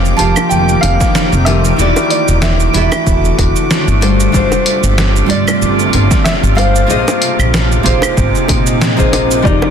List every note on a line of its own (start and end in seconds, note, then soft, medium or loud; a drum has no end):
0.00 0.13 F1 medium
0.00 1.76 D#3 medium
0.00 0.15 F3 medium
0.00 1.76 A#3 medium
0.00 0.15 F4 medium
0.00 0.16 G4 medium
0.00 1.76 G4 medium
0.00 0.16 A#4 medium
0.00 0.17 D#5 medium
0.00 0.21 F5 loud
0.00 9.47 D6 medium
0.05 cabasa soft
0.17 0.32 F1 medium
0.17 1.42 F3 medium
0.17 1.43 F4 medium
0.17 1.43 G4 medium
0.17 1.44 A#4 medium
0.17 1.44 F5 medium
0.17 0.51 A5 loud
0.17 closed hi-hat medium
0.36 high bongo medium
0.36 cabasa medium
0.36 claves medium
0.49 0.75 F1 medium
0.49 0.83 G5 loud
0.49 cabasa medium
0.69 cabasa soft
0.81 0.96 F1 medium
0.81 1.48 F5 loud
0.81 closed hi-hat medium
0.81 high bongo medium
1.01 kick loud
1.01 snare soft
1.01 cabasa medium
1.15 snare loud
1.15 cabasa medium
1.32 1.72 F1 loud
1.32 cabasa soft
1.45 1.75 F3 medium
1.45 1.75 F4 medium
1.45 1.76 G4 medium
1.45 1.76 A#4 medium
1.45 1.76 D#5 medium
1.45 2.06 E5 loud
1.45 closed hi-hat medium
1.45 high bongo medium
1.65 cabasa medium
1.77 1.91 E1 medium
1.77 4.01 D3 medium
1.77 2.70 E3 medium
1.77 6.86 A3 medium
1.77 2.71 E4 medium
1.77 2.71 F#4 medium
1.77 4.00 F#4 medium
1.77 2.72 A4 medium
1.77 cabasa medium
1.81 2.73 D5 loud
1.96 high bongo medium
1.96 cabasa soft
2.10 2.43 D5 medium
2.10 closed hi-hat medium
2.28 2.68 E1 medium
2.28 cabasa medium
2.42 3.98 E5 medium
2.42 snare medium
2.42 high bongo medium
2.42 cabasa medium
2.60 cabasa soft
2.73 2.87 E1 medium
2.73 3.98 E3 medium
2.73 3.99 E4 medium
2.73 3.99 F#4 medium
2.73 4.00 A4 medium
2.73 4.00 E5 loud
2.73 closed hi-hat medium
2.92 high bongo medium
2.92 cabasa medium
2.92 claves medium
3.07 3.30 E1 medium
3.07 kick medium
3.07 cabasa soft
3.25 cabasa soft
3.39 3.51 E1 medium
3.39 kick medium
3.39 closed hi-hat medium
3.39 high bongo medium
3.56 cabasa medium
3.71 snare medium
3.71 cabasa soft
3.88 4.27 G1 loud
3.88 cabasa soft
4.01 6.87 C3 medium
4.01 4.30 G3 medium
4.01 4.31 D4 medium
4.01 4.31 F4 medium
4.01 6.87 F4 medium
4.01 4.31 A4 medium
4.01 4.31 C5 medium
4.01 closed hi-hat medium
4.01 high bongo medium
4.20 cabasa medium
4.32 4.47 G1 medium
4.32 5.25 G3 medium
4.32 5.26 D4 medium
4.32 5.26 F4 medium
4.32 5.27 A4 medium
4.32 kick loud
4.32 cabasa medium
4.36 5.28 C5 medium
4.52 high bongo medium
4.52 cabasa soft
4.66 closed hi-hat medium
4.83 5.23 G1 medium
4.83 cabasa medium
4.98 snare loud
4.98 high bongo medium
4.98 cabasa medium
5.16 cabasa soft
5.26 5.42 G1 medium
5.26 6.52 G3 medium
5.26 6.53 D4 medium
5.26 6.54 F4 medium
5.26 6.54 A4 medium
5.26 6.29 D5 medium
5.26 closed hi-hat medium
5.31 6.55 D5 loud
5.48 high bongo medium
5.48 cabasa medium
5.48 claves medium
5.62 5.85 G1 medium
5.62 cabasa soft
5.79 cabasa soft
5.93 6.06 G1 medium
5.93 closed hi-hat medium
5.93 high bongo medium
6.11 kick loud
6.11 snare soft
6.11 cabasa medium
6.24 6.32 E5 loud
6.24 snare loud
6.24 cabasa medium
6.43 6.83 G1 loud
6.43 cabasa soft
6.55 6.85 G3 medium
6.55 6.85 D4 medium
6.55 6.86 F4 medium
6.55 6.86 A4 medium
6.55 6.86 C5 medium
6.55 8.77 F5 loud
6.55 closed hi-hat medium
6.55 high bongo medium
6.76 cabasa medium
6.87 7.02 A#1 medium
6.87 9.43 C3 medium
6.87 9.43 G#3 medium
6.87 7.81 A#3 medium
6.87 9.43 D#4 medium
6.87 7.81 F4 medium
6.87 7.82 G#4 medium
6.87 7.82 C5 medium
6.87 7.83 D#5 loud
6.87 cabasa soft
7.08 high bongo medium
7.08 cabasa soft
7.22 closed hi-hat medium
7.39 7.79 A#1 medium
7.39 cabasa medium
7.39 claves medium
7.54 snare loud
7.54 high bongo medium
7.54 cabasa medium
7.72 cabasa soft
7.83 7.98 A#1 medium
7.83 8.94 A#3 medium
7.83 8.95 F4 medium
7.83 8.95 G#4 medium
7.83 8.96 C5 medium
7.83 8.96 F5 loud
7.83 kick medium
7.83 closed hi-hat medium
8.02 high bongo medium
8.02 cabasa medium
8.02 claves medium
8.17 8.30 G#1 loud
8.17 kick loud
8.17 cabasa soft
8.35 cabasa soft
8.48 8.91 A#2 medium
8.48 kick medium
8.48 closed hi-hat medium
8.48 high bongo medium
8.66 cabasa medium
8.81 snare loud
8.81 cabasa medium
8.97 9.38 A#1 medium
8.97 9.41 A#3 medium
8.97 9.41 F4 medium
8.97 9.41 G#4 medium
8.97 9.41 C5 medium
8.97 9.42 D#5 medium
8.97 kick medium
8.97 cabasa soft
9.13 closed hi-hat medium
9.13 high bongo medium
9.31 cabasa medium
9.42 9.58 F1 medium
9.42 9.70 F3 medium
9.42 9.70 D#4 loud
9.42 9.70 F4 medium
9.42 9.70 G4 medium
9.42 9.70 A#4 medium
9.42 9.70 D5 medium
9.42 kick loud
9.42 cabasa soft
9.62 high bongo medium